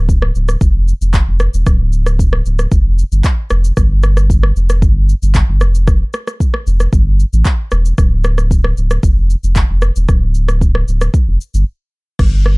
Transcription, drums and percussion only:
0.09 kick, shaker
0.22 cross-stick
0.35 shaker
0.48 cross-stick, shaker
0.61 kick, shaker
0.88 shaker
1.02 shaker
1.13 kick, clap, shaker
1.40 cross-stick, shaker
1.54 shaker
1.66 kick, cross-stick, shaker
1.92 shaker
2.06 cross-stick, shaker
2.19 kick, shaker
2.33 cross-stick
2.46 shaker
2.59 cross-stick, shaker
2.72 kick, shaker
2.99 shaker
3.12 shaker
3.24 kick, clap, shaker
3.50 cross-stick, shaker
3.64 shaker
3.77 kick, cross-stick, shaker
4.03 cross-stick, shaker
4.17 cross-stick, shaker
4.30 kick, shaker
4.43 cross-stick
4.56 shaker
4.69 cross-stick, shaker
4.82 kick, shaker
5.09 shaker
5.23 shaker
5.34 kick, clap, shaker
5.61 cross-stick, shaker
5.75 shaker
5.87 kick, cross-stick, shaker
6.13 cross-stick, shaker
6.27 cross-stick, shaker
6.40 kick, shaker
6.54 cross-stick
6.67 shaker
6.80 cross-stick, shaker
6.93 kick, shaker
7.20 shaker
7.33 shaker
7.45 kick, clap, shaker
7.71 cross-stick, shaker
7.85 shaker
7.98 kick, cross-stick, shaker
8.24 cross-stick, shaker
8.38 cross-stick, shaker
8.51 kick, shaker
8.64 cross-stick
8.77 shaker
8.91 cross-stick, shaker
9.03 kick, shaker
9.30 shaker
9.44 shaker
9.55 kick, clap, shaker
9.82 cross-stick, shaker
9.96 shaker
10.09 kick, cross-stick, shaker
10.34 shaker
10.49 cross-stick, shaker
10.61 kick, shaker
10.75 cross-stick
10.88 shaker
11.01 cross-stick, shaker
11.14 kick, shaker
11.41 shaker
11.54 shaker
12.19 kick, cross-stick, crash
12.46 cross-stick

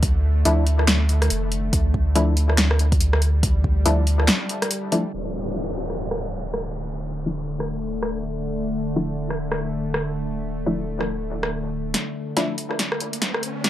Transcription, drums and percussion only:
0.03 kick, closed hi-hat
0.45 closed hi-hat
0.67 closed hi-hat
0.79 cross-stick
0.88 snare, clap, closed hi-hat
1.09 closed hi-hat
1.22 cross-stick, closed hi-hat
1.30 closed hi-hat
1.52 closed hi-hat
1.73 kick, closed hi-hat
1.94 kick
2.16 closed hi-hat
2.37 closed hi-hat
2.50 cross-stick
2.58 snare, clap, closed hi-hat
2.71 cross-stick
2.79 closed hi-hat
2.92 kick, closed hi-hat
3.01 closed hi-hat
3.13 cross-stick
3.22 closed hi-hat
3.43 kick, closed hi-hat
3.64 kick
3.86 closed hi-hat
4.07 closed hi-hat
4.20 cross-stick
4.28 snare, clap, closed hi-hat
4.49 closed hi-hat
4.62 cross-stick, closed hi-hat
4.71 closed hi-hat
4.92 closed hi-hat
5.90 cross-stick
6.11 cross-stick
6.54 cross-stick
7.60 cross-stick
8.03 cross-stick
9.30 cross-stick
9.52 cross-stick
9.94 cross-stick
11.01 cross-stick
11.43 cross-stick
11.94 snare, closed hi-hat
12.37 snare, closed hi-hat
12.58 closed hi-hat
12.71 cross-stick
12.79 snare, closed hi-hat
12.92 cross-stick
13.00 closed hi-hat
13.13 closed hi-hat
13.22 snare, closed hi-hat
13.34 cross-stick
13.43 closed hi-hat
13.64 snare, closed hi-hat

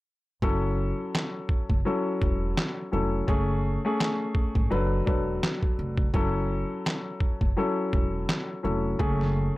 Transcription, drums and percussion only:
0.42 kick
1.15 snare, clap
1.49 kick
1.70 kick
2.22 kick
2.57 snare, clap
3.28 kick
4.00 snare, clap
4.35 kick
4.55 kick
5.07 kick
5.43 snare, clap
5.63 kick
5.98 kick
6.14 kick
6.86 snare, clap
7.20 kick
7.41 kick
7.93 kick
8.29 snare, clap
8.99 kick
9.21 snare

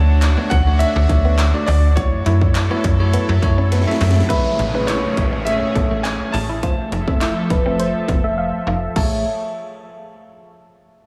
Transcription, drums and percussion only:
0.22 clap, closed hi-hat
0.51 kick, closed hi-hat
0.80 closed hi-hat
1.09 kick, closed hi-hat
1.39 clap, closed hi-hat
1.68 open hi-hat
1.97 kick, closed hi-hat
2.26 closed hi-hat
2.42 kick
2.55 clap, closed hi-hat
2.84 kick, closed hi-hat
3.13 closed hi-hat
3.42 kick, closed hi-hat
3.72 snare, closed hi-hat
3.81 snare
3.91 snare
4.01 snare, open hi-hat
4.11 snare
4.20 snare
4.30 kick, closed hi-hat
4.59 closed hi-hat
4.88 clap, closed hi-hat
5.17 kick, closed hi-hat
5.47 closed hi-hat
5.75 kick, closed hi-hat
6.05 clap, closed hi-hat
6.34 open hi-hat
6.63 kick, closed hi-hat
6.92 closed hi-hat
7.08 kick
7.21 clap, closed hi-hat
7.50 kick, closed hi-hat
7.80 closed hi-hat
8.08 kick, closed hi-hat
8.96 kick, crash

